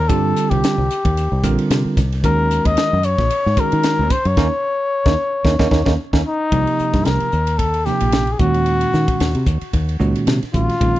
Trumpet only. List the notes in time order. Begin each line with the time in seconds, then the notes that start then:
0.08 A4
0.50 G4
2.25 A#4
2.66 D#5
3.05 C#5
3.60 A#4
4.12 C5
4.27 C#5
6.26 D#4
7.05 A#4
7.58 A4
7.86 G4
8.33 G#4
8.39 F#4
10.54 F4